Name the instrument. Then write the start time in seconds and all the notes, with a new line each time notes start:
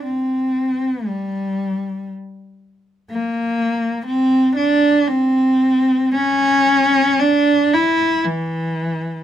cello
0.04 C4
1.05 G3
3.10 A#3
4.06 C4
4.56 D4
5.08 C4
6.15 C#4
7.19 D4
7.73 E4
8.25 E3